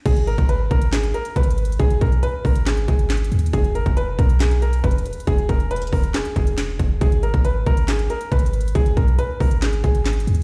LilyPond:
<<
  \new Staff \with { instrumentName = "Grand piano" } { \time 4/4 \key gis \minor \tempo 4 = 138 gis'8 ais'8 b'8 ais'8 gis'8 ais'8 b'4 | gis'8 ais'8 b'8 ais'8 gis'8 gis'4. | gis'8 ais'8 b'8 ais'8 gis'8 ais'8 b'4 | gis'8 ais'8 b'8 ais'8 gis'8 gis'4. |
gis'8 ais'8 b'8 ais'8 gis'8 ais'8 b'4 | gis'8 ais'8 b'8 ais'8 gis'8 gis'4. | }
  \new Staff \with { instrumentName = "808-style bass" } { \clef bass \time 4/4 \key gis \minor gis,,8. gis,,8. gis,,4 r8 gis,,4 | gis,,8 b,,8 r8 gis,,4 gis,,4 dis,8 | e,,8 gis,,16 e,,8. b,,4. e,,8 r8 | e,,8 e,,4 e,,8 r8 e,,4 e,,8 |
gis,,8. gis,,8. gis,,4 r8 gis,,4 | gis,,8 b,,8 r8 gis,,4 gis,,4 dis,8 | }
  \new DrumStaff \with { instrumentName = "Drums" } \drummode { \time 4/4 <cymc hh bd>16 hh16 hh16 <hh bd>16 hh8 <hh bd>16 hh16 <hc hh sn>16 hh16 hh16 hh16 \tuplet 3/2 { <hh bd>16 hh16 hh16 hh16 hh16 hh16 } | <hh bd>16 hh16 <hh bd>16 hh16 hh8 <hho bd>16 hh16 <hc hh sn>16 hh16 <hh bd>16 hh16 \tuplet 3/2 { <hc hh sn>16 hh16 hh16 hh16 hh16 hh16 } | <hh bd>16 hh16 hh16 <hh bd>16 hh8 <hh bd>16 hh16 <hc hh sn>16 hh16 hh16 hh16 \tuplet 3/2 { <hh bd>16 hh16 hh16 hh16 hh16 hh16 } | <hh bd>16 hh16 <hh bd>16 hh16 hh32 hh32 hh32 hh32 <hho bd>16 hh16 <hc hh sn>16 hh16 <hh bd>16 hh16 <hc hh sn>8 <hh bd>8 |
<hh bd>16 hh16 hh16 <hh bd>16 hh8 <hh bd>16 hh16 <hc hh sn>16 hh16 hh16 hh16 \tuplet 3/2 { <hh bd>16 hh16 hh16 hh16 hh16 hh16 } | <hh bd>16 hh16 <hh bd>16 hh16 hh8 <hho bd>16 hh16 <hc hh sn>16 hh16 <hh bd>16 hh16 \tuplet 3/2 { <hc hh sn>16 hh16 hh16 hh16 hh16 r16 } | }
>>